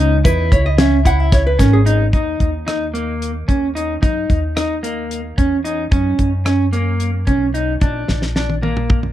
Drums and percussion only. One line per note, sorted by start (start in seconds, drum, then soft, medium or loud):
0.25 kick loud
0.25 closed hi-hat medium
0.25 shaker medium
0.52 kick medium
0.52 closed hi-hat medium
0.78 snare loud
0.78 closed hi-hat loud
0.78 shaker soft
1.06 kick medium
1.06 closed hi-hat medium
1.06 shaker soft
1.32 kick loud
1.32 snare soft
1.32 closed hi-hat medium
1.59 kick medium
1.59 snare soft
1.59 closed hi-hat medium
1.59 shaker soft
1.86 closed hi-hat medium
1.86 shaker soft
2.13 kick medium
2.13 closed hi-hat medium
2.40 kick medium
2.40 closed hi-hat soft
2.68 cross-stick medium
2.68 closed hi-hat medium
2.95 closed hi-hat soft
3.22 closed hi-hat medium
3.49 kick medium
3.49 closed hi-hat soft
3.77 closed hi-hat soft
4.03 kick medium
4.03 closed hi-hat medium
4.30 kick medium
4.30 closed hi-hat soft
4.57 cross-stick medium
4.57 closed hi-hat medium
4.84 closed hi-hat soft
5.11 closed hi-hat medium
5.38 kick medium
5.38 closed hi-hat soft
5.65 closed hi-hat medium
5.92 kick medium
5.92 closed hi-hat medium
6.19 kick medium
6.19 closed hi-hat soft
6.46 cross-stick medium
6.46 closed hi-hat medium
6.73 closed hi-hat soft
7.00 closed hi-hat medium
7.27 kick medium
7.27 closed hi-hat soft
7.55 closed hi-hat medium
7.81 kick medium
7.81 closed hi-hat medium
8.08 snare soft
8.22 snare soft
8.36 snare soft
8.50 high tom soft
8.63 high tom soft
8.77 mid tom medium
8.90 kick medium
8.90 mid tom medium
9.03 mid tom soft